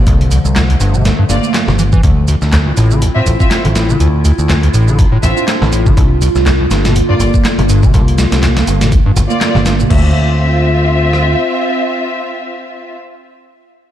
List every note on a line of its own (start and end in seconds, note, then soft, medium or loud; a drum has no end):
0.00 1.99 D3 medium
0.00 2.00 F3 loud
0.06 0.14 C2 medium
0.06 0.37 C2 loud
0.06 2.01 A3 medium
0.06 kick loud
0.06 closed hi-hat medium
0.06 shaker soft
0.21 closed hi-hat soft
0.31 0.39 C2 loud
0.31 closed hi-hat medium
0.31 shaker medium
0.45 0.74 C2 medium
0.45 shaker soft
0.56 0.60 C2 loud
0.56 snare loud
0.56 clap loud
0.56 closed hi-hat medium
0.56 shaker soft
0.70 0.76 C2 medium
0.70 closed hi-hat soft
0.80 1.10 G1 loud
0.80 0.96 G2 medium
0.80 closed hi-hat medium
0.80 shaker medium
0.94 1.07 C3 loud
0.94 shaker soft
1.05 1.13 A#1 medium
1.05 snare loud
1.05 closed hi-hat medium
1.05 shaker soft
1.19 1.25 G2 loud
1.29 1.38 G1 medium
1.29 1.37 G2 medium
1.29 1.45 A#3 medium
1.29 1.45 F4 medium
1.29 1.45 D5 medium
1.29 closed hi-hat medium
1.29 shaker medium
1.43 shaker soft
1.54 snare loud
1.54 clap loud
1.54 closed hi-hat medium
1.54 shaker soft
1.68 1.97 G1 loud
1.68 1.71 C3 loud
1.68 snare medium
1.79 1.83 E3 medium
1.79 closed hi-hat medium
1.79 shaker medium
1.93 2.02 E3 medium
1.93 kick loud
1.93 shaker soft
2.03 2.11 D2 medium
2.03 2.33 D2 loud
2.03 3.98 C4 medium
2.03 5.93 E4 medium
2.03 9.86 F4 loud
2.03 kick loud
2.03 closed hi-hat medium
2.03 shaker soft
2.28 2.36 D2 loud
2.28 closed hi-hat medium
2.28 shaker medium
2.42 2.71 D2 medium
2.42 snare soft
2.42 shaker soft
2.53 2.57 D2 loud
2.53 snare loud
2.53 clap loud
2.53 closed hi-hat medium
2.53 shaker soft
2.66 2.72 D2 medium
2.77 3.07 A1 loud
2.77 2.93 A2 medium
2.77 closed hi-hat medium
2.77 shaker medium
2.91 3.03 D3 loud
2.91 shaker soft
3.02 3.09 C2 medium
3.02 closed hi-hat medium
3.02 shaker soft
3.15 3.22 A2 loud
3.15 3.28 C4 medium
3.15 3.28 F4 medium
3.15 3.28 E5 loud
3.26 3.35 A1 medium
3.26 3.31 D2 medium
3.26 closed hi-hat medium
3.26 shaker medium
3.40 3.53 C4 medium
3.40 3.53 F4 medium
3.40 3.53 E5 medium
3.40 kick loud
3.40 shaker soft
3.51 snare loud
3.51 clap loud
3.51 closed hi-hat medium
3.51 shaker soft
3.65 3.94 A1 loud
3.65 3.68 D3 loud
3.65 closed hi-hat soft
3.75 3.91 A2 medium
3.75 snare loud
3.75 closed hi-hat medium
3.75 shaker medium
3.89 3.98 D3 loud
3.89 shaker soft
4.00 4.30 D2 loud
4.00 4.08 D2 medium
4.00 5.95 D4 medium
4.00 closed hi-hat medium
4.00 shaker soft
4.25 4.32 D2 loud
4.25 closed hi-hat medium
4.25 shaker medium
4.39 4.67 D2 medium
4.39 shaker soft
4.49 4.54 D2 loud
4.49 snare loud
4.49 clap loud
4.49 closed hi-hat medium
4.49 shaker soft
4.63 4.69 D2 medium
4.63 closed hi-hat soft
4.74 5.04 A1 loud
4.74 4.89 A2 medium
4.74 closed hi-hat medium
4.74 shaker medium
4.87 5.00 D3 loud
4.87 shaker soft
4.98 5.06 C2 medium
4.98 kick loud
4.98 closed hi-hat medium
4.98 shaker soft
5.12 5.18 A2 loud
5.23 5.32 A1 medium
5.23 5.28 D2 medium
5.23 5.38 C4 medium
5.23 5.38 F4 medium
5.23 5.38 E5 loud
5.23 closed hi-hat medium
5.23 shaker medium
5.37 shaker soft
5.48 snare loud
5.48 clap loud
5.48 closed hi-hat medium
5.48 shaker soft
5.62 5.90 A1 loud
5.62 5.65 D3 loud
5.62 snare medium
5.72 5.88 A2 medium
5.72 closed hi-hat medium
5.72 shaker medium
5.86 5.95 D3 loud
5.86 kick medium
5.86 shaker soft
5.97 6.05 C2 medium
5.97 6.27 C2 loud
5.97 9.87 D3 medium
5.97 9.86 A#3 medium
5.97 kick loud
5.97 closed hi-hat medium
5.97 shaker soft
6.22 6.29 C2 loud
6.22 closed hi-hat medium
6.22 shaker medium
6.35 6.64 C2 medium
6.35 snare soft
6.35 shaker soft
6.46 6.51 C2 loud
6.46 snare loud
6.46 clap loud
6.46 closed hi-hat medium
6.46 shaker soft
6.60 6.66 C2 medium
6.71 7.01 G1 loud
6.71 6.87 G2 medium
6.71 snare loud
6.71 closed hi-hat medium
6.71 shaker medium
6.85 6.97 C3 loud
6.85 snare loud
6.85 closed hi-hat medium
6.85 shaker soft
6.95 7.03 A#1 medium
6.95 closed hi-hat medium
6.95 shaker soft
7.09 7.15 G2 loud
7.09 7.22 A#3 medium
7.09 7.22 F4 medium
7.09 7.22 D5 loud
7.20 7.28 G1 medium
7.20 7.25 C2 medium
7.20 closed hi-hat medium
7.20 shaker medium
7.34 kick loud
7.34 shaker soft
7.45 snare loud
7.45 clap loud
7.45 closed hi-hat medium
7.45 shaker soft
7.58 7.87 G1 medium
7.58 7.62 C3 loud
7.58 closed hi-hat soft
7.69 7.85 G2 medium
7.69 closed hi-hat medium
7.69 shaker medium
7.83 7.92 C3 loud
7.83 kick loud
7.83 shaker soft
7.94 8.24 C2 loud
7.94 8.02 C2 medium
7.94 kick loud
7.94 closed hi-hat medium
7.94 shaker soft
8.08 closed hi-hat soft
8.18 8.26 C2 loud
8.18 snare loud
8.18 closed hi-hat medium
8.18 shaker medium
8.32 8.61 C2 medium
8.32 snare loud
8.32 closed hi-hat medium
8.32 shaker soft
8.43 8.47 C2 loud
8.43 snare loud
8.43 clap loud
8.43 closed hi-hat medium
8.43 shaker soft
8.57 8.63 C2 medium
8.57 snare loud
8.57 closed hi-hat medium
8.67 8.97 G1 loud
8.67 8.83 G2 medium
8.67 closed hi-hat medium
8.67 shaker medium
8.81 8.94 C3 loud
8.81 snare loud
8.81 closed hi-hat medium
8.81 shaker soft
8.92 9.00 A#1 medium
8.92 kick loud
8.92 closed hi-hat medium
8.92 shaker soft
9.06 9.12 G2 loud
9.16 9.25 G1 loud
9.16 9.21 C2 medium
9.16 closed hi-hat medium
9.16 shaker medium
9.30 9.52 A#3 medium
9.30 9.52 F4 medium
9.30 9.52 D5 loud
9.30 shaker soft
9.41 snare loud
9.41 clap loud
9.41 closed hi-hat medium
9.41 shaker soft
9.55 9.84 G1 loud
9.55 9.59 C3 loud
9.55 snare medium
9.66 9.81 G2 medium
9.66 snare loud
9.66 closed hi-hat medium
9.66 shaker medium
9.80 9.89 C3 loud
9.80 shaker soft
9.90 10.13 D2 medium
9.90 11.34 D2 loud
9.90 12.95 C4 medium
9.90 12.96 C4 medium
9.90 12.96 F4 medium
9.90 12.96 F4 loud
9.90 12.96 E5 loud
9.90 kick loud
9.90 crash medium
11.13 cross-stick medium